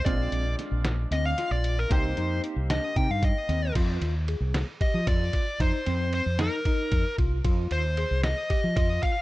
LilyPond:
<<
  \new Staff \with { instrumentName = "Lead electric guitar" } { \time 7/8 \key f \dorian \tempo 4 = 114 d''4 r4 ees''16 f''8 d''8 bes'16 | c''4 r8 ees''8 g''16 f''16 ees''4 | r2 ees''8 d''4 | c''4 c''8 bes'4. r8 |
r8 c''4 ees''4 ees''8 f''8 | }
  \new Staff \with { instrumentName = "Tine electric piano" } { \time 7/8 \key f \dorian c'4 d'4 c'8 f'4 | ees'8 ees'4 d'8 ees'4 c'8 | f'4 aes'4 g'8 f'4 | ees'8 c'4 ees'8 ees'4 f'8 |
f'4 aes'4 g'8 f'4 | }
  \new Staff \with { instrumentName = "Grand piano" } { \time 7/8 \key f \dorian <aes c' d' f'>2.~ <aes c' d' f'>8 | <bes c' ees' g'>2.~ <bes c' ees' g'>8 | r2. r8 | r2. r8 |
r2. r8 | }
  \new Staff \with { instrumentName = "Fretless electric bass" } { \clef bass \time 7/8 \key f \dorian bes,,8 bes,,8 r16 bes,,8. d,8 r16 bes,,8. | c,8 f,8 r16 c,8 r16 c16 g,8 r16 ees,8 | f,8 ees,8. c,8 r8 f16 f,8 r8 | f,16 r16 f,8. f,8 r8. f,16 r16 c,8 |
f,8 ees,8. c,8 r8 f16 f,8 r8 | }
  \new DrumStaff \with { instrumentName = "Drums" } \drummode { \time 7/8 <hh bd>8 hh8 <hh sn>8 <hh sn>8 <hh sn>8 <hh sn>8 hh8 | <hh bd>8 hh8 hh8 <hh sn>8 <hh bd>8 <hh bd>8 <hh sn>8 | <cymc bd cymr>8 <cymr sn>8 cymr8 <cymr sn>8 <bd cymr>8 <bd cymr sn>8 <bd cymr>8 | <bd cymr>8 <cymr sn>8 cymr8 <cymr sn>8 <bd cymr>8 <bd cymr>8 <bd cymr>8 |
<bd cymr>8 cymr8 cymr8 <cymr sn>8 <bd cymr>8 <bd cymr>8 <bd cymr>8 | }
>>